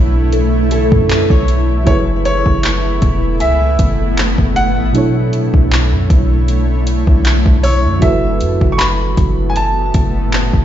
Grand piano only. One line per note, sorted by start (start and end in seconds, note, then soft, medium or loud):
1.87 1.96 C#5 medium
2.25 3.37 C#5 loud
3.41 4.14 E5 loud
4.56 5.67 F#5 loud
7.63 8.03 C#5 medium
8.02 8.75 E5 loud
8.72 8.79 C#6 medium
8.78 9.51 B5 loud
9.50 9.56 G#5 medium
9.56 10.65 A5 loud